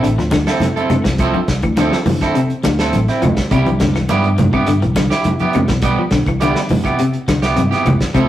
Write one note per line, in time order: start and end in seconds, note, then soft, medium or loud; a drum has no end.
0.03 0.18 A1 medium
0.03 0.12 D3 medium
0.03 closed hi-hat medium
0.18 0.45 D2 medium
0.18 0.27 F3 medium
0.18 snare soft
0.18 closed hi-hat soft
0.31 0.49 D3 medium
0.31 kick medium
0.31 snare medium
0.31 closed hi-hat soft
0.31 high conga medium
0.31 claves medium
0.47 0.65 C4 soft
0.47 0.65 E4 soft
0.47 0.64 A4 medium
0.47 snare medium
0.47 closed hi-hat soft
0.60 snare soft
0.60 closed hi-hat medium
0.60 high conga medium
0.60 low conga medium
0.76 0.94 C4 soft
0.76 0.94 E4 medium
0.76 0.94 A4 soft
0.76 closed hi-hat soft
0.90 0.99 C3 medium
0.90 closed hi-hat medium
0.90 high conga medium
0.90 low conga medium
0.90 claves medium
1.04 1.32 C2 medium
1.04 1.22 E3 medium
1.04 kick medium
1.04 snare medium
1.04 closed hi-hat soft
1.18 1.38 F3 medium
1.18 1.38 C4 medium
1.18 1.38 E4 medium
1.18 1.38 A4 medium
1.18 kick medium
1.18 closed hi-hat medium
1.18 claves medium
1.34 1.42 F3 medium
1.34 high conga medium
1.48 1.62 C2 medium
1.48 kick medium
1.48 snare medium
1.48 closed hi-hat medium
1.62 1.90 D2 medium
1.62 1.72 E3 medium
1.62 kick medium
1.62 closed hi-hat soft
1.62 claves medium
1.77 1.95 D3 medium
1.77 1.96 F3 medium
1.77 1.96 C4 medium
1.77 1.96 E4 medium
1.77 1.96 A4 medium
1.77 snare soft
1.77 closed hi-hat medium
1.77 high conga medium
1.92 snare medium
2.06 2.33 D3 medium
2.06 2.23 E3 medium
2.06 open hi-hat medium
2.06 high conga medium
2.06 low conga medium
2.21 2.39 C4 soft
2.21 2.39 E4 soft
2.21 2.39 A4 medium
2.21 kick medium
2.21 snare soft
2.21 closed hi-hat soft
2.21 claves medium
2.35 2.52 C3 medium
2.35 closed hi-hat medium
2.50 closed hi-hat soft
2.63 2.90 D2 medium
2.63 2.81 D3 medium
2.63 kick medium
2.63 snare medium
2.63 closed hi-hat soft
2.63 high conga medium
2.63 claves medium
2.79 2.97 C4 soft
2.79 2.97 E4 soft
2.79 2.97 A4 medium
2.79 snare medium
2.79 closed hi-hat soft
2.93 3.07 A1 medium
2.93 closed hi-hat medium
2.93 high conga medium
3.08 3.26 C4 soft
3.08 3.26 E4 soft
3.08 snare soft
3.08 closed hi-hat soft
3.22 3.36 D2 medium
3.22 3.39 F3 medium
3.22 closed hi-hat soft
3.22 low conga medium
3.22 claves medium
3.37 kick medium
3.37 snare medium
3.37 closed hi-hat soft
3.51 4.05 C2 medium
3.51 3.60 C3 medium
3.51 3.69 G3 medium
3.51 3.69 E4 medium
3.51 3.70 G4 medium
3.51 muted clean electric guitar stroke medium
3.51 kick medium
3.51 closed hi-hat medium
3.51 claves medium
3.66 3.75 E3 medium
3.66 closed hi-hat soft
3.66 high conga medium
3.80 3.89 D3 medium
3.80 kick medium
3.80 snare medium
3.80 closed hi-hat soft
3.80 low conga medium
3.95 4.12 E3 medium
3.95 snare soft
3.95 closed hi-hat soft
3.95 claves medium
4.09 4.50 G2 medium
4.09 4.27 G3 medium
4.09 4.27 B3 medium
4.09 4.27 E4 medium
4.09 4.28 G4 medium
4.09 closed hi-hat medium
4.09 high conga medium
4.24 closed hi-hat soft
4.38 4.47 E3 medium
4.38 closed hi-hat medium
4.38 high conga medium
4.38 low conga medium
4.53 4.66 G2 medium
4.53 4.62 C3 medium
4.53 4.71 B3 soft
4.53 4.71 E4 soft
4.53 4.70 G4 medium
4.53 kick medium
4.53 claves medium
4.67 4.85 G2 medium
4.67 4.76 D3 medium
4.67 closed hi-hat medium
4.82 5.09 C2 medium
4.82 4.91 E3 medium
4.82 closed hi-hat soft
4.96 5.13 D3 medium
4.96 kick medium
4.96 snare medium
4.96 closed hi-hat soft
4.96 high conga medium
4.96 claves medium
5.10 5.28 E4 medium
5.10 5.28 G4 medium
5.10 snare medium
5.10 closed hi-hat soft
5.24 closed hi-hat medium
5.24 high conga medium
5.24 low conga medium
5.39 5.58 B3 soft
5.39 5.58 E4 soft
5.39 5.57 G4 medium
5.39 closed hi-hat soft
5.39 high conga medium
5.53 5.63 C3 medium
5.53 closed hi-hat soft
5.53 low conga medium
5.53 claves medium
5.68 5.95 B1 medium
5.68 5.86 E3 medium
5.68 kick medium
5.68 snare medium
5.68 closed hi-hat soft
5.82 6.01 G3 medium
5.82 6.01 B3 medium
5.82 6.01 G4 medium
5.82 muted clean electric guitar stroke medium
5.82 kick medium
5.82 closed hi-hat medium
5.82 claves medium
5.99 6.07 F3 medium
6.11 6.25 B1 medium
6.11 6.21 D3 medium
6.11 kick medium
6.11 snare medium
6.11 closed hi-hat soft
6.26 6.53 C2 medium
6.26 6.36 E3 medium
6.26 kick medium
6.26 closed hi-hat soft
6.26 claves medium
6.40 6.59 D3 medium
6.40 6.58 G3 medium
6.40 6.59 B3 medium
6.40 6.59 E4 medium
6.40 6.59 G4 medium
6.40 closed hi-hat medium
6.40 high conga medium
6.55 snare medium
6.69 6.96 C3 medium
6.69 6.87 E3 medium
6.69 open hi-hat medium
6.69 high conga medium
6.69 low conga medium
6.84 7.02 B3 soft
6.84 7.02 E4 soft
6.84 7.01 G4 soft
6.84 kick medium
6.84 closed hi-hat soft
6.84 claves medium
6.99 7.16 C3 medium
6.99 closed hi-hat medium
7.13 closed hi-hat soft
7.28 7.54 C2 medium
7.28 7.45 D3 medium
7.28 kick medium
7.28 snare medium
7.28 closed hi-hat soft
7.28 high conga medium
7.28 claves medium
7.42 7.60 B3 soft
7.42 7.60 E4 soft
7.42 7.60 G4 medium
7.42 snare medium
7.42 closed hi-hat soft
7.56 7.71 G2 medium
7.56 7.73 C3 medium
7.56 closed hi-hat medium
7.56 high conga medium
7.71 7.89 B3 soft
7.71 7.89 E4 soft
7.71 7.88 G4 medium
7.71 snare soft
7.71 closed hi-hat soft
7.85 7.99 C2 medium
7.85 8.03 E3 medium
7.85 closed hi-hat medium
7.85 low conga medium
7.85 claves medium
8.01 kick medium
8.01 snare medium
8.01 closed hi-hat soft
8.14 8.29 D2 medium
8.14 8.23 C3 medium
8.14 8.29 F3 medium
8.14 8.29 C4 medium
8.14 8.29 E4 medium
8.14 8.29 A4 medium
8.14 kick medium
8.14 closed hi-hat medium
8.14 claves medium